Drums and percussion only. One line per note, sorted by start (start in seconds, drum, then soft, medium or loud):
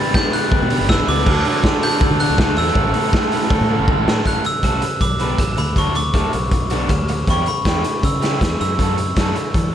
0.14 kick loud
0.14 snare loud
0.33 open hi-hat medium
0.52 kick loud
0.70 open hi-hat medium
0.89 kick loud
0.89 snare loud
1.08 open hi-hat medium
1.18 snare soft
1.26 kick loud
1.26 crash loud
1.45 open hi-hat medium
1.64 kick loud
1.64 snare loud
1.83 open hi-hat loud
2.01 kick loud
2.20 open hi-hat loud
2.38 kick loud
2.38 snare loud
2.57 open hi-hat medium
2.67 snare soft
2.75 kick loud
2.94 open hi-hat medium
3.13 kick loud
3.13 snare loud
3.32 open hi-hat medium
3.50 kick loud
3.88 kick loud
4.08 snare loud
4.26 kick loud
4.26 closed hi-hat medium
4.45 closed hi-hat medium
4.63 kick medium
4.63 cross-stick medium
4.63 closed hi-hat medium
4.82 closed hi-hat medium
5.01 kick loud
5.01 closed hi-hat medium
5.20 cross-stick medium
5.20 closed hi-hat medium
5.38 kick loud
5.38 cross-stick loud
5.38 closed hi-hat medium
5.58 closed hi-hat medium
5.76 kick medium
5.76 closed hi-hat medium
5.95 closed hi-hat medium
6.14 kick medium
6.14 cross-stick loud
6.14 closed hi-hat medium
6.33 closed hi-hat medium
6.51 kick loud
6.51 closed hi-hat medium
6.70 cross-stick medium
6.70 closed hi-hat medium
6.89 kick loud
6.89 cross-stick loud
6.89 closed hi-hat medium
7.08 closed hi-hat medium
7.27 kick loud
7.27 closed hi-hat medium
7.46 closed hi-hat medium
7.65 kick medium
7.65 snare loud
7.65 closed hi-hat medium
7.84 closed hi-hat medium
8.03 kick loud
8.03 closed hi-hat medium
8.22 snare medium
8.22 closed hi-hat medium
8.41 kick loud
8.41 snare loud
8.41 closed hi-hat medium
8.61 closed hi-hat medium
8.79 kick medium
8.79 closed hi-hat medium
8.98 closed hi-hat medium
9.16 kick loud
9.16 snare medium
9.16 closed hi-hat medium
9.36 closed hi-hat medium
9.54 kick loud
9.54 closed hi-hat medium